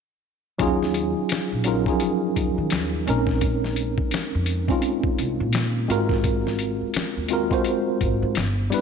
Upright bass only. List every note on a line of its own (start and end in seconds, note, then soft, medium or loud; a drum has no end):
0.60 1.12 D#2 medium
1.17 muted upright bass stroke soft
1.32 muted upright bass stroke soft
1.52 1.84 A#1 medium
2.37 2.56 D#2 medium
2.58 2.73 D#3 medium
2.72 3.04 D#2 medium
3.07 3.94 A#1 medium
3.98 muted upright bass stroke soft
4.13 muted upright bass stroke soft
4.35 4.66 F2 medium
5.19 5.42 C2 medium
5.40 5.85 A#2 medium
5.90 6.77 G#1 medium
6.82 muted upright bass stroke soft
6.95 muted upright bass stroke soft
7.17 7.48 D#2 medium
8.01 8.20 G#1 medium
8.22 8.35 G#2 medium
8.37 8.68 G1 medium